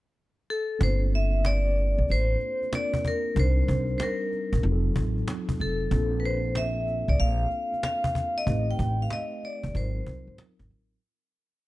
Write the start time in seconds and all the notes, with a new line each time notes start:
0.50 A4
0.79 G1 A#3 C4 D4 F4 A4, cajon bass
0.83 C5
1.13 E5, cajon slap
1.32 cajon slap
1.45 D5, cajon slap
1.77 cajon slap
1.98 A#1, cajon slap
2.08 A1 C5, cajon slap
2.40 cajon slap
2.62 cajon slap
2.72 A#3 C4 D4 F4 A#4 D5, cajon slap
2.94 cajon bass
3.05 A#4, cajon bass, cajon slap
3.26 cajon slap
3.35 C2 G3 C4 D4 D#4 A#4, cajon bass
3.40 C5
3.68 C2, cajon bass
3.88 cajon slap
3.98 C5, cajon slap
4.03 A#4
4.33 cajon slap
4.53 A#1, cajon bass
4.63 F1 F#3 C4 D#4 F4 F#4, cajon slap
4.72 A4
4.96 A1, cajon bass
5.17 cajon slap
5.28 cajon slap
5.49 muted upright bass stroke, cajon bass
5.59 F1 A4, cajon slap
5.80 cajon slap
5.90 A#1 A#3 C4 D4 F4 A4, cajon bass
6.20 B4, cajon slap
6.26 C5
6.43 cajon slap
6.55 E5, cajon slap
6.88 cajon slap
7.08 C2 D5
7.18 A#1 F5, cajon slap
7.51 cajon slap
7.72 cajon slap
7.83 F5, cajon slap
8.04 cajon bass
8.15 cajon bass, cajon slap
8.36 D#5, cajon slap
8.46 A1 A3 C4 D#4 G4 B4, cajon bass
8.71 G5
8.79 A1, cajon bass
8.98 F5, cajon slap
9.10 D#5, cajon slap
9.43 D5, cajon slap
9.63 G1, cajon bass
9.73 G#1 F#3 C4 D#4 F4 A#4 C5, cajon bass
10.07 C2, cajon bass
10.27 G#1, cajon slap
10.38 cajon slap
10.59 G#1, cajon bass, cajon slap
10.69 A1, cajon slap